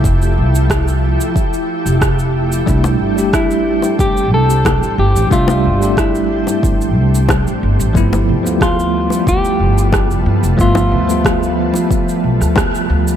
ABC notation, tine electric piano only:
X:1
M:4/4
L:1/16
Q:1/4=91
K:C
V:1 name="Tine electric piano"
z16 | [G,A,DE]3 [G,A,DG] z12 | [G,A,De]3 [G,A,DG] z12 | [F,A,B,E]3 [F,A,B,F] z12 |
[F,A,B,e]3 [F,A,B,F] z12 |]